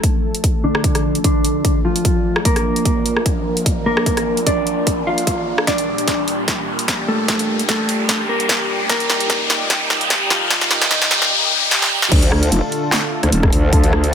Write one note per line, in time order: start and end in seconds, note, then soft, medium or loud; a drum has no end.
0.00 5.63 F3 medium
0.00 2.42 A3 medium
0.00 8.85 D4 medium
0.00 2.42 A4 medium
0.00 kick medium
0.00 closed hi-hat medium
0.00 riser medium
0.35 closed hi-hat medium
0.44 kick loud
0.44 closed hi-hat medium
0.64 1.17 D3 medium
0.64 1.17 D4 medium
0.75 cross-stick medium
0.84 kick loud
0.84 closed hi-hat medium
0.95 cross-stick medium
0.95 closed hi-hat soft
1.15 closed hi-hat medium
1.24 1.77 D3 medium
1.24 1.77 D4 medium
1.24 kick medium
1.24 closed hi-hat medium
1.45 closed hi-hat medium
1.65 kick medium
1.65 closed hi-hat medium
1.85 2.38 F3 medium
1.85 2.38 F4 medium
1.96 closed hi-hat medium
2.05 kick loud
2.05 closed hi-hat medium
2.36 cross-stick medium
2.45 3.18 A#3 medium
2.45 5.64 A#3 medium
2.45 5.64 A#4 medium
2.45 3.18 A#4 loud
2.45 kick loud
2.45 closed hi-hat medium
2.56 cross-stick medium
2.56 closed hi-hat soft
2.76 closed hi-hat soft
2.85 kick medium
2.85 closed hi-hat medium
3.06 closed hi-hat medium
3.17 cross-stick medium
3.26 kick loud
3.26 closed hi-hat medium
3.57 closed hi-hat medium
3.66 kick loud
3.66 closed hi-hat medium
3.86 4.39 A#3 medium
3.86 4.39 A#4 medium
3.97 cross-stick medium
4.06 kick loud
4.06 closed hi-hat medium
4.17 cross-stick medium
4.17 closed hi-hat soft
4.37 closed hi-hat soft
4.46 5.00 D4 medium
4.46 5.00 D5 medium
4.46 kick medium
4.46 closed hi-hat medium
4.67 closed hi-hat soft
4.87 kick loud
4.87 closed hi-hat medium
5.07 5.60 F4 medium
5.07 5.60 F5 medium
5.18 closed hi-hat soft
5.27 kick loud
5.27 closed hi-hat medium
5.58 cross-stick medium
5.67 8.86 A#2 medium
5.67 12.08 G3 medium
5.67 6.40 D4 medium
5.67 12.08 G4 medium
5.67 6.40 D5 loud
5.67 kick loud
5.67 snare soft
5.67 closed hi-hat medium
5.78 closed hi-hat soft
5.98 closed hi-hat medium
6.08 kick medium
6.08 snare soft
6.08 closed hi-hat medium
6.28 open hi-hat medium
6.48 kick loud
6.48 snare soft
6.48 closed hi-hat medium
6.79 closed hi-hat medium
6.88 kick loud
6.88 snare medium
6.88 closed hi-hat medium
7.08 7.61 A3 medium
7.08 7.61 A4 loud
7.28 kick loud
7.28 snare medium
7.28 closed hi-hat medium
7.39 closed hi-hat medium
7.59 closed hi-hat medium
7.69 8.22 A3 medium
7.69 8.22 A4 medium
7.69 kick medium
7.69 snare medium
7.69 closed hi-hat medium
7.89 open hi-hat medium
8.09 kick loud
8.09 snare medium
8.09 closed hi-hat medium
8.29 8.82 A#3 medium
8.29 8.82 A#4 medium
8.40 closed hi-hat medium
8.49 kick loud
8.49 snare medium
8.49 closed hi-hat medium
8.89 12.08 A#2 medium
8.89 9.63 A#3 medium
8.89 12.08 D#4 medium
8.89 9.63 A#4 loud
8.89 kick loud
8.89 snare medium
8.89 closed hi-hat medium
9.00 closed hi-hat medium
9.10 snare medium
9.20 closed hi-hat medium
9.30 kick loud
9.30 snare medium
9.30 closed hi-hat medium
9.50 snare medium
9.50 open hi-hat medium
9.70 kick loud
9.70 snare medium
9.70 closed hi-hat medium
9.90 snare medium
10.01 closed hi-hat medium
10.10 kick loud
10.10 snare medium
10.10 closed hi-hat medium
10.30 10.83 F3 medium
10.30 10.83 F4 medium
10.30 snare medium
10.50 kick loud
10.50 snare medium
10.50 closed hi-hat medium
10.61 snare medium
10.61 closed hi-hat medium
10.71 snare medium
10.82 snare medium
10.82 closed hi-hat medium
10.91 11.31 D#3 medium
10.91 11.31 D#4 medium
10.91 kick loud
10.91 snare loud
10.91 closed hi-hat medium
11.02 snare medium
11.11 snare loud
11.11 open hi-hat loud
11.22 snare medium
11.71 snare medium
11.82 snare medium
12.02 snare medium
12.12 12.50 D2 loud
12.12 14.14 D3 medium
12.12 14.14 A3 medium
12.12 14.14 F4 medium
12.12 14.14 A4 medium
12.12 kick loud
12.12 closed hi-hat medium
12.12 crash loud
12.23 closed hi-hat medium
12.32 cross-stick medium
12.43 closed hi-hat medium
12.52 12.61 F1 loud
12.52 closed hi-hat medium
12.72 open hi-hat medium
12.92 snare loud
12.92 clap medium
12.92 closed hi-hat medium
13.23 13.31 D2 loud
13.23 cross-stick medium
13.23 closed hi-hat medium
13.32 13.51 D#1 loud
13.32 closed hi-hat medium
13.43 kick loud
13.43 cross-stick medium
13.53 13.71 D2 medium
13.53 open hi-hat medium
13.73 14.14 D2 loud
13.73 kick loud
13.73 closed hi-hat medium
13.84 closed hi-hat medium
13.93 cross-stick medium
14.04 closed hi-hat medium